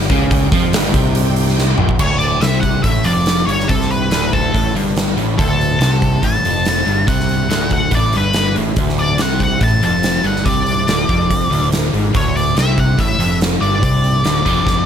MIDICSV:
0, 0, Header, 1, 6, 480
1, 0, Start_track
1, 0, Tempo, 422535
1, 346, Time_signature, 4, 2, 24, 8
1, 16879, End_track
2, 0, Start_track
2, 0, Title_t, "Lead electric guitar"
2, 0, Program_c, 0, 29
2, 2273, Note_on_c, 0, 73, 92
2, 2484, Note_off_c, 0, 73, 0
2, 2488, Note_on_c, 0, 74, 75
2, 2733, Note_on_c, 0, 76, 84
2, 2749, Note_off_c, 0, 74, 0
2, 2957, Note_off_c, 0, 76, 0
2, 2962, Note_on_c, 0, 78, 80
2, 3210, Note_off_c, 0, 78, 0
2, 3215, Note_on_c, 0, 76, 88
2, 3460, Note_on_c, 0, 74, 79
2, 3473, Note_off_c, 0, 76, 0
2, 3915, Note_off_c, 0, 74, 0
2, 3936, Note_on_c, 0, 73, 74
2, 4185, Note_on_c, 0, 69, 85
2, 4194, Note_off_c, 0, 73, 0
2, 4437, Note_on_c, 0, 71, 77
2, 4439, Note_off_c, 0, 69, 0
2, 4920, Note_on_c, 0, 69, 70
2, 4933, Note_off_c, 0, 71, 0
2, 5367, Note_off_c, 0, 69, 0
2, 6114, Note_on_c, 0, 69, 98
2, 7092, Note_on_c, 0, 81, 98
2, 7108, Note_off_c, 0, 69, 0
2, 8040, Note_off_c, 0, 81, 0
2, 8045, Note_on_c, 0, 78, 95
2, 8766, Note_off_c, 0, 78, 0
2, 8780, Note_on_c, 0, 78, 77
2, 9018, Note_off_c, 0, 78, 0
2, 9030, Note_on_c, 0, 74, 78
2, 9263, Note_off_c, 0, 74, 0
2, 9277, Note_on_c, 0, 71, 62
2, 9707, Note_off_c, 0, 71, 0
2, 10214, Note_on_c, 0, 74, 70
2, 10454, Note_off_c, 0, 74, 0
2, 10470, Note_on_c, 0, 78, 74
2, 10702, Note_off_c, 0, 78, 0
2, 10717, Note_on_c, 0, 78, 87
2, 10943, Note_off_c, 0, 78, 0
2, 10947, Note_on_c, 0, 81, 93
2, 11170, Note_off_c, 0, 81, 0
2, 11184, Note_on_c, 0, 81, 92
2, 11658, Note_off_c, 0, 81, 0
2, 11663, Note_on_c, 0, 78, 80
2, 11872, Note_on_c, 0, 74, 78
2, 11898, Note_off_c, 0, 78, 0
2, 13268, Note_off_c, 0, 74, 0
2, 13816, Note_on_c, 0, 73, 90
2, 14042, Note_off_c, 0, 73, 0
2, 14047, Note_on_c, 0, 74, 83
2, 14287, Note_off_c, 0, 74, 0
2, 14300, Note_on_c, 0, 76, 88
2, 14532, Note_on_c, 0, 78, 87
2, 14533, Note_off_c, 0, 76, 0
2, 14766, Note_on_c, 0, 76, 97
2, 14769, Note_off_c, 0, 78, 0
2, 15204, Note_off_c, 0, 76, 0
2, 15463, Note_on_c, 0, 74, 73
2, 16879, Note_off_c, 0, 74, 0
2, 16879, End_track
3, 0, Start_track
3, 0, Title_t, "Tonewheel organ"
3, 0, Program_c, 1, 16
3, 0, Note_on_c, 1, 67, 74
3, 0, Note_on_c, 1, 74, 68
3, 0, Note_on_c, 1, 79, 70
3, 2223, Note_off_c, 1, 67, 0
3, 2229, Note_off_c, 1, 74, 0
3, 2229, Note_off_c, 1, 79, 0
3, 16879, End_track
4, 0, Start_track
4, 0, Title_t, "Overdriven electric guitar"
4, 0, Program_c, 2, 29
4, 123, Note_on_c, 2, 49, 92
4, 588, Note_off_c, 2, 49, 0
4, 599, Note_on_c, 2, 53, 89
4, 826, Note_off_c, 2, 53, 0
4, 836, Note_on_c, 2, 43, 100
4, 1071, Note_off_c, 2, 43, 0
4, 1071, Note_on_c, 2, 48, 100
4, 2025, Note_off_c, 2, 48, 0
4, 2032, Note_on_c, 2, 46, 100
4, 2265, Note_off_c, 2, 46, 0
4, 2271, Note_on_c, 2, 38, 91
4, 2745, Note_off_c, 2, 38, 0
4, 2753, Note_on_c, 2, 48, 87
4, 3221, Note_off_c, 2, 48, 0
4, 3226, Note_on_c, 2, 45, 91
4, 3454, Note_off_c, 2, 45, 0
4, 3458, Note_on_c, 2, 41, 88
4, 3941, Note_off_c, 2, 41, 0
4, 3954, Note_on_c, 2, 43, 91
4, 4189, Note_off_c, 2, 43, 0
4, 4194, Note_on_c, 2, 48, 85
4, 4661, Note_off_c, 2, 48, 0
4, 4666, Note_on_c, 2, 38, 97
4, 5146, Note_off_c, 2, 38, 0
4, 5157, Note_on_c, 2, 45, 90
4, 5392, Note_off_c, 2, 45, 0
4, 5411, Note_on_c, 2, 43, 92
4, 5872, Note_off_c, 2, 43, 0
4, 5877, Note_on_c, 2, 45, 95
4, 6103, Note_off_c, 2, 45, 0
4, 6108, Note_on_c, 2, 38, 93
4, 6586, Note_off_c, 2, 38, 0
4, 6591, Note_on_c, 2, 48, 95
4, 7069, Note_off_c, 2, 48, 0
4, 7073, Note_on_c, 2, 45, 89
4, 7302, Note_off_c, 2, 45, 0
4, 7302, Note_on_c, 2, 41, 96
4, 7785, Note_off_c, 2, 41, 0
4, 7799, Note_on_c, 2, 43, 99
4, 8032, Note_off_c, 2, 43, 0
4, 8037, Note_on_c, 2, 48, 88
4, 8506, Note_off_c, 2, 48, 0
4, 8510, Note_on_c, 2, 38, 85
4, 8989, Note_off_c, 2, 38, 0
4, 9002, Note_on_c, 2, 45, 90
4, 9234, Note_off_c, 2, 45, 0
4, 9239, Note_on_c, 2, 43, 95
4, 9710, Note_off_c, 2, 43, 0
4, 9715, Note_on_c, 2, 45, 92
4, 9950, Note_off_c, 2, 45, 0
4, 9954, Note_on_c, 2, 38, 92
4, 10429, Note_off_c, 2, 38, 0
4, 10434, Note_on_c, 2, 48, 92
4, 10910, Note_off_c, 2, 48, 0
4, 10915, Note_on_c, 2, 45, 91
4, 11150, Note_off_c, 2, 45, 0
4, 11157, Note_on_c, 2, 41, 97
4, 11631, Note_off_c, 2, 41, 0
4, 11637, Note_on_c, 2, 43, 92
4, 11871, Note_off_c, 2, 43, 0
4, 11878, Note_on_c, 2, 48, 92
4, 12347, Note_off_c, 2, 48, 0
4, 12351, Note_on_c, 2, 38, 98
4, 12587, Note_off_c, 2, 38, 0
4, 12598, Note_on_c, 2, 41, 90
4, 13061, Note_off_c, 2, 41, 0
4, 13065, Note_on_c, 2, 38, 97
4, 13543, Note_off_c, 2, 38, 0
4, 13557, Note_on_c, 2, 44, 104
4, 13780, Note_off_c, 2, 44, 0
4, 13784, Note_on_c, 2, 38, 93
4, 14261, Note_off_c, 2, 38, 0
4, 14272, Note_on_c, 2, 48, 101
4, 14740, Note_off_c, 2, 48, 0
4, 14744, Note_on_c, 2, 45, 99
4, 14980, Note_off_c, 2, 45, 0
4, 14986, Note_on_c, 2, 41, 92
4, 15460, Note_off_c, 2, 41, 0
4, 15465, Note_on_c, 2, 43, 86
4, 15692, Note_off_c, 2, 43, 0
4, 15697, Note_on_c, 2, 48, 91
4, 16173, Note_off_c, 2, 48, 0
4, 16182, Note_on_c, 2, 38, 96
4, 16414, Note_off_c, 2, 38, 0
4, 16414, Note_on_c, 2, 41, 91
4, 16879, Note_off_c, 2, 41, 0
4, 16879, End_track
5, 0, Start_track
5, 0, Title_t, "Fingered electric bass"
5, 0, Program_c, 3, 33
5, 113, Note_on_c, 3, 37, 80
5, 557, Note_off_c, 3, 37, 0
5, 592, Note_on_c, 3, 41, 83
5, 813, Note_off_c, 3, 41, 0
5, 827, Note_on_c, 3, 31, 88
5, 1051, Note_off_c, 3, 31, 0
5, 1069, Note_on_c, 3, 36, 84
5, 1986, Note_off_c, 3, 36, 0
5, 2031, Note_on_c, 3, 34, 85
5, 2255, Note_off_c, 3, 34, 0
5, 2262, Note_on_c, 3, 26, 85
5, 2714, Note_off_c, 3, 26, 0
5, 2746, Note_on_c, 3, 36, 78
5, 3197, Note_off_c, 3, 36, 0
5, 3225, Note_on_c, 3, 33, 82
5, 3453, Note_off_c, 3, 33, 0
5, 3474, Note_on_c, 3, 29, 73
5, 3922, Note_off_c, 3, 29, 0
5, 3949, Note_on_c, 3, 31, 73
5, 4177, Note_off_c, 3, 31, 0
5, 4191, Note_on_c, 3, 36, 92
5, 4641, Note_off_c, 3, 36, 0
5, 4664, Note_on_c, 3, 26, 78
5, 5118, Note_off_c, 3, 26, 0
5, 5162, Note_on_c, 3, 33, 82
5, 5385, Note_off_c, 3, 33, 0
5, 5397, Note_on_c, 3, 31, 75
5, 5846, Note_off_c, 3, 31, 0
5, 5880, Note_on_c, 3, 33, 74
5, 6104, Note_off_c, 3, 33, 0
5, 6120, Note_on_c, 3, 26, 94
5, 6568, Note_off_c, 3, 26, 0
5, 6584, Note_on_c, 3, 36, 80
5, 7039, Note_off_c, 3, 36, 0
5, 7072, Note_on_c, 3, 33, 87
5, 7300, Note_off_c, 3, 33, 0
5, 7316, Note_on_c, 3, 29, 72
5, 7765, Note_off_c, 3, 29, 0
5, 7801, Note_on_c, 3, 31, 71
5, 8025, Note_off_c, 3, 31, 0
5, 8042, Note_on_c, 3, 36, 94
5, 8489, Note_off_c, 3, 36, 0
5, 8529, Note_on_c, 3, 26, 78
5, 8972, Note_off_c, 3, 26, 0
5, 8996, Note_on_c, 3, 33, 77
5, 9222, Note_off_c, 3, 33, 0
5, 9246, Note_on_c, 3, 31, 75
5, 9690, Note_off_c, 3, 31, 0
5, 9732, Note_on_c, 3, 33, 71
5, 9950, Note_off_c, 3, 33, 0
5, 9957, Note_on_c, 3, 26, 84
5, 10405, Note_off_c, 3, 26, 0
5, 10447, Note_on_c, 3, 36, 83
5, 10890, Note_off_c, 3, 36, 0
5, 10916, Note_on_c, 3, 33, 85
5, 11141, Note_off_c, 3, 33, 0
5, 11158, Note_on_c, 3, 29, 74
5, 11605, Note_off_c, 3, 29, 0
5, 11633, Note_on_c, 3, 31, 76
5, 11859, Note_off_c, 3, 31, 0
5, 11875, Note_on_c, 3, 36, 88
5, 12323, Note_off_c, 3, 36, 0
5, 12356, Note_on_c, 3, 26, 73
5, 12580, Note_off_c, 3, 26, 0
5, 12601, Note_on_c, 3, 29, 81
5, 13045, Note_off_c, 3, 29, 0
5, 13073, Note_on_c, 3, 26, 73
5, 13520, Note_off_c, 3, 26, 0
5, 13560, Note_on_c, 3, 32, 72
5, 13781, Note_off_c, 3, 32, 0
5, 13800, Note_on_c, 3, 26, 86
5, 14243, Note_off_c, 3, 26, 0
5, 14280, Note_on_c, 3, 36, 88
5, 14722, Note_off_c, 3, 36, 0
5, 14750, Note_on_c, 3, 33, 79
5, 14974, Note_off_c, 3, 33, 0
5, 14985, Note_on_c, 3, 29, 78
5, 15433, Note_off_c, 3, 29, 0
5, 15464, Note_on_c, 3, 31, 71
5, 15689, Note_off_c, 3, 31, 0
5, 15709, Note_on_c, 3, 36, 86
5, 16153, Note_off_c, 3, 36, 0
5, 16168, Note_on_c, 3, 26, 79
5, 16398, Note_off_c, 3, 26, 0
5, 16425, Note_on_c, 3, 29, 78
5, 16868, Note_off_c, 3, 29, 0
5, 16879, End_track
6, 0, Start_track
6, 0, Title_t, "Drums"
6, 14, Note_on_c, 9, 38, 32
6, 112, Note_on_c, 9, 36, 100
6, 124, Note_on_c, 9, 46, 51
6, 128, Note_off_c, 9, 38, 0
6, 226, Note_off_c, 9, 36, 0
6, 237, Note_off_c, 9, 46, 0
6, 353, Note_on_c, 9, 36, 109
6, 363, Note_on_c, 9, 46, 73
6, 466, Note_off_c, 9, 36, 0
6, 477, Note_off_c, 9, 46, 0
6, 591, Note_on_c, 9, 36, 99
6, 602, Note_on_c, 9, 46, 53
6, 705, Note_off_c, 9, 36, 0
6, 715, Note_off_c, 9, 46, 0
6, 831, Note_on_c, 9, 46, 81
6, 844, Note_on_c, 9, 38, 102
6, 945, Note_off_c, 9, 46, 0
6, 957, Note_off_c, 9, 38, 0
6, 1068, Note_on_c, 9, 36, 102
6, 1070, Note_on_c, 9, 46, 53
6, 1182, Note_off_c, 9, 36, 0
6, 1184, Note_off_c, 9, 46, 0
6, 1305, Note_on_c, 9, 46, 71
6, 1419, Note_off_c, 9, 46, 0
6, 1549, Note_on_c, 9, 46, 59
6, 1663, Note_off_c, 9, 46, 0
6, 1680, Note_on_c, 9, 38, 30
6, 1794, Note_off_c, 9, 38, 0
6, 1800, Note_on_c, 9, 38, 59
6, 1914, Note_off_c, 9, 38, 0
6, 2019, Note_on_c, 9, 45, 71
6, 2132, Note_off_c, 9, 45, 0
6, 2145, Note_on_c, 9, 36, 81
6, 2258, Note_off_c, 9, 36, 0
6, 2261, Note_on_c, 9, 49, 83
6, 2266, Note_on_c, 9, 36, 93
6, 2375, Note_off_c, 9, 49, 0
6, 2379, Note_off_c, 9, 36, 0
6, 2504, Note_on_c, 9, 46, 37
6, 2617, Note_off_c, 9, 46, 0
6, 2743, Note_on_c, 9, 46, 58
6, 2755, Note_on_c, 9, 38, 89
6, 2856, Note_off_c, 9, 46, 0
6, 2869, Note_off_c, 9, 38, 0
6, 2987, Note_on_c, 9, 36, 73
6, 2990, Note_on_c, 9, 46, 41
6, 3100, Note_off_c, 9, 36, 0
6, 3104, Note_off_c, 9, 46, 0
6, 3224, Note_on_c, 9, 46, 63
6, 3226, Note_on_c, 9, 36, 78
6, 3338, Note_off_c, 9, 46, 0
6, 3340, Note_off_c, 9, 36, 0
6, 3456, Note_on_c, 9, 46, 55
6, 3570, Note_off_c, 9, 46, 0
6, 3703, Note_on_c, 9, 46, 63
6, 3716, Note_on_c, 9, 38, 90
6, 3817, Note_off_c, 9, 46, 0
6, 3829, Note_off_c, 9, 38, 0
6, 3962, Note_on_c, 9, 46, 44
6, 4076, Note_off_c, 9, 46, 0
6, 4090, Note_on_c, 9, 38, 28
6, 4194, Note_on_c, 9, 46, 64
6, 4196, Note_on_c, 9, 36, 92
6, 4204, Note_off_c, 9, 38, 0
6, 4307, Note_off_c, 9, 46, 0
6, 4309, Note_off_c, 9, 36, 0
6, 4331, Note_on_c, 9, 38, 33
6, 4442, Note_on_c, 9, 46, 39
6, 4444, Note_off_c, 9, 38, 0
6, 4555, Note_off_c, 9, 46, 0
6, 4671, Note_on_c, 9, 46, 59
6, 4684, Note_on_c, 9, 38, 93
6, 4785, Note_off_c, 9, 46, 0
6, 4797, Note_off_c, 9, 38, 0
6, 4921, Note_on_c, 9, 36, 72
6, 4921, Note_on_c, 9, 46, 39
6, 5034, Note_off_c, 9, 36, 0
6, 5035, Note_off_c, 9, 46, 0
6, 5163, Note_on_c, 9, 36, 76
6, 5175, Note_on_c, 9, 46, 58
6, 5277, Note_off_c, 9, 36, 0
6, 5289, Note_off_c, 9, 46, 0
6, 5413, Note_on_c, 9, 46, 47
6, 5527, Note_off_c, 9, 46, 0
6, 5640, Note_on_c, 9, 46, 58
6, 5652, Note_on_c, 9, 38, 93
6, 5753, Note_off_c, 9, 46, 0
6, 5766, Note_off_c, 9, 38, 0
6, 5880, Note_on_c, 9, 46, 38
6, 5994, Note_off_c, 9, 46, 0
6, 6122, Note_on_c, 9, 36, 105
6, 6133, Note_on_c, 9, 46, 53
6, 6236, Note_off_c, 9, 36, 0
6, 6247, Note_off_c, 9, 46, 0
6, 6374, Note_on_c, 9, 46, 39
6, 6487, Note_off_c, 9, 46, 0
6, 6597, Note_on_c, 9, 46, 61
6, 6610, Note_on_c, 9, 38, 95
6, 6711, Note_off_c, 9, 46, 0
6, 6723, Note_off_c, 9, 38, 0
6, 6840, Note_on_c, 9, 36, 80
6, 6848, Note_on_c, 9, 46, 41
6, 6954, Note_off_c, 9, 36, 0
6, 6962, Note_off_c, 9, 46, 0
6, 7078, Note_on_c, 9, 36, 69
6, 7078, Note_on_c, 9, 46, 67
6, 7191, Note_off_c, 9, 36, 0
6, 7192, Note_off_c, 9, 46, 0
6, 7326, Note_on_c, 9, 46, 55
6, 7439, Note_off_c, 9, 46, 0
6, 7559, Note_on_c, 9, 46, 60
6, 7571, Note_on_c, 9, 38, 95
6, 7672, Note_off_c, 9, 46, 0
6, 7685, Note_off_c, 9, 38, 0
6, 7810, Note_on_c, 9, 46, 41
6, 7924, Note_off_c, 9, 46, 0
6, 8043, Note_on_c, 9, 36, 102
6, 8048, Note_on_c, 9, 46, 62
6, 8156, Note_off_c, 9, 36, 0
6, 8162, Note_off_c, 9, 46, 0
6, 8177, Note_on_c, 9, 38, 30
6, 8282, Note_on_c, 9, 46, 42
6, 8291, Note_off_c, 9, 38, 0
6, 8396, Note_off_c, 9, 46, 0
6, 8525, Note_on_c, 9, 46, 60
6, 8538, Note_on_c, 9, 38, 89
6, 8639, Note_off_c, 9, 46, 0
6, 8651, Note_off_c, 9, 38, 0
6, 8751, Note_on_c, 9, 46, 44
6, 8759, Note_on_c, 9, 36, 73
6, 8865, Note_off_c, 9, 46, 0
6, 8873, Note_off_c, 9, 36, 0
6, 8989, Note_on_c, 9, 46, 63
6, 8997, Note_on_c, 9, 36, 69
6, 9102, Note_off_c, 9, 46, 0
6, 9111, Note_off_c, 9, 36, 0
6, 9234, Note_on_c, 9, 46, 48
6, 9347, Note_off_c, 9, 46, 0
6, 9467, Note_on_c, 9, 46, 56
6, 9479, Note_on_c, 9, 38, 96
6, 9580, Note_off_c, 9, 46, 0
6, 9593, Note_off_c, 9, 38, 0
6, 9721, Note_on_c, 9, 46, 40
6, 9834, Note_off_c, 9, 46, 0
6, 9953, Note_on_c, 9, 46, 52
6, 9960, Note_on_c, 9, 36, 87
6, 10067, Note_off_c, 9, 46, 0
6, 10074, Note_off_c, 9, 36, 0
6, 10100, Note_on_c, 9, 38, 33
6, 10202, Note_on_c, 9, 46, 42
6, 10214, Note_off_c, 9, 38, 0
6, 10316, Note_off_c, 9, 46, 0
6, 10431, Note_on_c, 9, 46, 59
6, 10443, Note_on_c, 9, 38, 94
6, 10544, Note_off_c, 9, 46, 0
6, 10557, Note_off_c, 9, 38, 0
6, 10677, Note_on_c, 9, 46, 43
6, 10681, Note_on_c, 9, 36, 69
6, 10790, Note_off_c, 9, 46, 0
6, 10795, Note_off_c, 9, 36, 0
6, 10913, Note_on_c, 9, 46, 55
6, 10918, Note_on_c, 9, 36, 77
6, 11027, Note_off_c, 9, 46, 0
6, 11032, Note_off_c, 9, 36, 0
6, 11163, Note_on_c, 9, 46, 53
6, 11277, Note_off_c, 9, 46, 0
6, 11395, Note_on_c, 9, 46, 58
6, 11408, Note_on_c, 9, 38, 96
6, 11509, Note_off_c, 9, 46, 0
6, 11522, Note_off_c, 9, 38, 0
6, 11635, Note_on_c, 9, 46, 41
6, 11749, Note_off_c, 9, 46, 0
6, 11768, Note_on_c, 9, 38, 30
6, 11879, Note_on_c, 9, 36, 96
6, 11879, Note_on_c, 9, 46, 69
6, 11881, Note_off_c, 9, 38, 0
6, 11993, Note_off_c, 9, 36, 0
6, 11993, Note_off_c, 9, 46, 0
6, 12117, Note_on_c, 9, 46, 45
6, 12230, Note_off_c, 9, 46, 0
6, 12358, Note_on_c, 9, 46, 61
6, 12371, Note_on_c, 9, 38, 103
6, 12472, Note_off_c, 9, 46, 0
6, 12484, Note_off_c, 9, 38, 0
6, 12600, Note_on_c, 9, 36, 79
6, 12602, Note_on_c, 9, 46, 47
6, 12713, Note_off_c, 9, 36, 0
6, 12716, Note_off_c, 9, 46, 0
6, 12843, Note_on_c, 9, 36, 75
6, 12844, Note_on_c, 9, 46, 65
6, 12956, Note_off_c, 9, 36, 0
6, 12958, Note_off_c, 9, 46, 0
6, 13093, Note_on_c, 9, 46, 53
6, 13207, Note_off_c, 9, 46, 0
6, 13318, Note_on_c, 9, 46, 61
6, 13331, Note_on_c, 9, 38, 92
6, 13432, Note_off_c, 9, 46, 0
6, 13444, Note_off_c, 9, 38, 0
6, 13564, Note_on_c, 9, 46, 41
6, 13678, Note_off_c, 9, 46, 0
6, 13796, Note_on_c, 9, 46, 58
6, 13799, Note_on_c, 9, 36, 99
6, 13910, Note_off_c, 9, 46, 0
6, 13913, Note_off_c, 9, 36, 0
6, 14052, Note_on_c, 9, 46, 40
6, 14166, Note_off_c, 9, 46, 0
6, 14276, Note_on_c, 9, 46, 56
6, 14288, Note_on_c, 9, 38, 97
6, 14389, Note_off_c, 9, 46, 0
6, 14402, Note_off_c, 9, 38, 0
6, 14516, Note_on_c, 9, 36, 79
6, 14519, Note_on_c, 9, 46, 40
6, 14629, Note_off_c, 9, 36, 0
6, 14633, Note_off_c, 9, 46, 0
6, 14753, Note_on_c, 9, 36, 78
6, 14753, Note_on_c, 9, 46, 65
6, 14866, Note_off_c, 9, 36, 0
6, 14867, Note_off_c, 9, 46, 0
6, 14996, Note_on_c, 9, 46, 52
6, 15109, Note_off_c, 9, 46, 0
6, 15235, Note_on_c, 9, 46, 53
6, 15248, Note_on_c, 9, 38, 98
6, 15349, Note_off_c, 9, 46, 0
6, 15362, Note_off_c, 9, 38, 0
6, 15479, Note_on_c, 9, 46, 41
6, 15592, Note_off_c, 9, 46, 0
6, 15710, Note_on_c, 9, 36, 99
6, 15717, Note_on_c, 9, 46, 66
6, 15824, Note_off_c, 9, 36, 0
6, 15831, Note_off_c, 9, 46, 0
6, 15950, Note_on_c, 9, 46, 45
6, 16063, Note_off_c, 9, 46, 0
6, 16182, Note_on_c, 9, 46, 59
6, 16195, Note_on_c, 9, 38, 91
6, 16296, Note_off_c, 9, 46, 0
6, 16308, Note_off_c, 9, 38, 0
6, 16426, Note_on_c, 9, 36, 70
6, 16433, Note_on_c, 9, 46, 48
6, 16539, Note_off_c, 9, 36, 0
6, 16547, Note_off_c, 9, 46, 0
6, 16661, Note_on_c, 9, 36, 77
6, 16666, Note_on_c, 9, 38, 57
6, 16775, Note_off_c, 9, 36, 0
6, 16780, Note_off_c, 9, 38, 0
6, 16879, End_track
0, 0, End_of_file